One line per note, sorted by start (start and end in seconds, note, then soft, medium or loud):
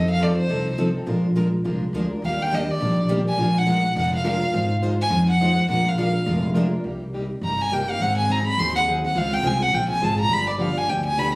0.00 0.37 F2 medium
0.00 0.10 D#4 medium
0.00 0.10 A4 medium
0.11 0.24 F5 loud
0.21 0.31 F3 loud
0.21 0.31 C4 medium
0.21 0.32 D#4 loud
0.21 0.32 A4 loud
0.21 0.37 D5 medium
0.38 0.76 C5 loud
0.48 0.95 C2 loud
0.48 0.68 F3 medium
0.48 0.68 C4 medium
0.48 0.69 D#4 medium
0.48 0.69 A4 medium
0.79 0.89 F3 loud
0.79 0.89 C4 loud
0.79 0.89 D#4 loud
0.79 0.89 A4 loud
0.94 1.08 C4 medium
0.94 1.08 D#4 medium
0.94 1.07 A4 medium
1.07 1.53 A#1 medium
1.07 1.26 F3 medium
1.07 1.26 G#3 medium
1.07 1.26 D4 medium
1.07 1.27 F4 medium
1.07 1.27 A#4 medium
1.36 1.47 F3 medium
1.36 1.47 G#3 loud
1.36 1.47 D4 medium
1.36 1.47 F4 medium
1.36 1.47 A#4 loud
1.64 1.90 C2 medium
1.64 1.83 F3 medium
1.64 1.84 G#3 medium
1.64 1.84 D4 medium
1.64 1.84 F4 medium
1.64 1.84 A#4 medium
1.93 2.18 D2 medium
1.93 2.04 F3 loud
1.93 2.04 G#3 medium
1.93 2.05 D4 medium
1.93 2.05 F4 loud
1.93 2.05 A#4 loud
2.11 2.23 D4 soft
2.11 2.23 F4 medium
2.11 2.23 A#4 medium
2.22 2.69 D#2 medium
2.22 2.42 D#3 medium
2.22 2.42 G3 medium
2.22 2.42 A#3 medium
2.22 2.42 D4 medium
2.22 2.42 G4 medium
2.22 2.44 F5 medium
2.42 2.56 G5 loud
2.52 2.62 D#3 medium
2.52 2.63 G3 loud
2.52 2.63 A#3 medium
2.52 2.63 D4 medium
2.52 2.63 G4 medium
2.52 2.73 D#5 medium
2.71 3.11 D5 medium
2.81 3.27 A#1 loud
2.81 3.00 D#3 medium
2.81 3.00 G3 medium
2.81 3.00 A#3 medium
2.81 3.00 D4 medium
2.81 3.00 G4 medium
3.10 3.20 D#3 medium
3.10 3.20 G3 loud
3.10 3.20 A#3 loud
3.10 3.20 D4 medium
3.10 3.21 G4 loud
3.27 3.39 A#3 soft
3.27 3.38 D4 medium
3.27 3.39 G4 medium
3.27 3.60 G#5 loud
3.38 3.84 A#1 loud
3.38 3.58 F3 medium
3.38 3.58 G#3 medium
3.38 3.58 D4 medium
3.38 3.58 F4 medium
3.38 3.58 A#4 medium
3.58 3.98 F#5 loud
3.67 3.78 F3 medium
3.67 3.78 G#3 medium
3.67 3.78 D4 loud
3.67 3.78 F4 loud
3.67 3.79 A#4 loud
3.95 4.42 F1 loud
3.95 4.15 F3 medium
3.95 4.15 G#3 medium
3.95 4.15 D4 medium
3.95 4.15 F4 medium
3.95 4.15 A#4 medium
3.95 4.13 F#5 medium
4.15 4.26 F5 loud
4.24 4.35 F3 loud
4.24 4.35 G#3 loud
4.24 4.35 D4 loud
4.24 4.35 F4 loud
4.24 4.35 A#4 loud
4.24 4.69 F5 loud
4.40 4.54 D4 medium
4.40 4.52 F4 medium
4.40 4.53 A#4 medium
4.53 5.00 G#1 medium
4.53 4.72 G#3 medium
4.53 4.73 D#4 medium
4.53 4.72 F4 medium
4.53 4.73 C5 medium
4.82 4.92 G#3 medium
4.82 4.93 D#4 loud
4.82 4.93 F4 loud
4.82 4.93 C5 loud
5.02 5.27 G#5 loud
5.10 5.57 F2 loud
5.10 5.30 G#3 medium
5.10 5.30 D#4 medium
5.10 5.30 F4 medium
5.10 5.31 C5 medium
5.30 5.68 F#5 loud
5.40 5.51 G#3 loud
5.40 5.51 D#4 loud
5.40 5.51 F4 loud
5.40 5.51 C5 loud
5.57 5.69 D#4 soft
5.57 5.69 F4 medium
5.57 5.69 C5 medium
5.68 6.15 A#1 loud
5.68 5.88 F3 medium
5.68 5.88 G#3 medium
5.68 5.88 D4 medium
5.68 5.88 F4 medium
5.68 5.88 A#4 medium
5.68 5.90 F#5 loud
5.89 6.00 F5 loud
5.98 6.08 F3 medium
5.98 6.08 G#3 loud
5.98 6.08 D4 loud
5.98 6.08 F4 loud
5.98 6.09 A#4 loud
5.98 6.42 F5 medium
6.26 6.73 F1 loud
6.26 6.45 F3 medium
6.26 6.45 G#3 medium
6.26 6.45 D4 medium
6.26 6.46 F4 medium
6.26 6.46 A#4 medium
6.54 6.65 F3 loud
6.54 6.65 G#3 loud
6.54 6.65 D4 loud
6.54 6.65 F4 loud
6.54 6.66 A#4 loud
6.71 6.85 D4 medium
6.71 6.85 F4 medium
6.71 6.84 A#4 medium
6.84 7.31 C2 medium
6.84 7.03 C3 medium
6.84 7.03 G3 medium
6.84 7.04 A#3 medium
6.84 7.04 D#4 medium
6.84 7.04 G4 medium
7.13 7.24 C3 medium
7.13 7.24 G3 medium
7.13 7.24 A#3 medium
7.13 7.24 D#4 loud
7.13 7.24 G4 medium
7.41 7.88 G1 medium
7.41 7.61 C3 medium
7.41 7.61 G3 medium
7.41 7.62 A#3 medium
7.41 7.62 D#4 medium
7.41 7.62 G4 medium
7.41 7.63 A#5 medium
7.61 7.75 G#5 loud
7.72 7.82 C3 loud
7.72 7.82 G3 medium
7.72 7.82 A#3 loud
7.72 7.82 D#4 medium
7.72 7.82 G4 loud
7.72 7.92 G5 medium
7.88 8.01 A#3 soft
7.88 8.00 D#4 medium
7.88 8.00 G4 soft
7.88 8.03 F5 loud
8.00 8.46 G#1 medium
8.00 8.19 D#3 medium
8.00 8.20 F#3 medium
8.00 8.20 C4 medium
8.00 8.20 D#4 medium
8.00 8.20 G#4 medium
8.00 8.17 F#5 loud
8.18 8.33 G#5 loud
8.29 8.39 D#3 medium
8.29 8.40 F#3 medium
8.29 8.40 C4 loud
8.29 8.40 D#4 loud
8.29 8.40 G#4 loud
8.29 8.46 A#5 medium
8.47 8.61 B5 loud
8.58 9.04 D#2 medium
8.58 8.77 D#3 medium
8.58 8.77 F#3 medium
8.58 8.77 C4 medium
8.58 8.77 D#4 medium
8.58 8.78 G#4 medium
8.58 8.75 C6 medium
8.76 8.83 F#5 loud
8.88 8.98 D#3 medium
8.88 8.98 F#3 loud
8.88 8.98 C4 loud
8.88 8.98 D#4 loud
8.88 8.98 G#4 loud
9.03 9.16 C4 soft
9.03 9.16 D#4 medium
9.03 9.15 G#4 medium
9.03 9.20 F#5 medium
9.15 9.39 C#2 medium
9.15 9.34 C#3 medium
9.15 9.34 G#3 medium
9.15 9.35 C4 medium
9.15 9.35 F4 medium
9.15 9.35 G#4 medium
9.15 9.35 F5 loud
9.34 9.49 G5 loud
9.43 9.68 C2 medium
9.43 9.55 C#3 loud
9.43 9.55 G#3 loud
9.43 9.55 C4 loud
9.43 9.55 F4 loud
9.43 9.55 G#4 loud
9.47 9.64 G#5 loud
9.63 9.76 F#5 loud
9.73 9.98 A#1 medium
9.73 9.92 C#3 medium
9.73 9.92 G#3 medium
9.73 9.92 C4 medium
9.73 9.92 F4 medium
9.73 9.93 G#4 medium
9.73 9.89 G5 medium
9.90 10.05 G#5 loud
10.01 10.27 G#1 medium
10.01 10.12 C#3 loud
10.01 10.12 G#3 loud
10.01 10.12 C4 loud
10.01 10.13 F4 loud
10.01 10.13 G#4 loud
10.01 10.20 A5 medium
10.18 10.30 C4 soft
10.18 10.31 F4 medium
10.18 10.30 G#4 medium
10.18 10.35 A#5 loud
10.29 10.76 G1 loud
10.29 10.50 D3 medium
10.29 10.50 F3 medium
10.29 10.50 B3 medium
10.29 10.50 D4 medium
10.29 10.50 G4 medium
10.29 10.49 B5 loud
10.50 10.63 D5 medium
10.58 10.70 D3 medium
10.58 10.69 F3 loud
10.58 10.70 B3 loud
10.58 10.70 D4 loud
10.58 10.70 G4 loud
10.58 10.79 F5 medium
10.78 10.91 G#5 loud
10.88 11.35 D2 loud
10.88 11.07 D3 medium
10.88 11.07 F3 medium
10.88 11.08 B3 medium
10.88 11.07 D4 medium
10.88 11.08 G4 medium
10.88 11.05 G5 medium
11.06 11.20 G#5 loud
11.17 11.28 D3 loud
11.17 11.28 F3 loud
11.17 11.28 B3 loud
11.17 11.28 D4 medium
11.17 11.28 G4 loud
11.17 11.34 B5 loud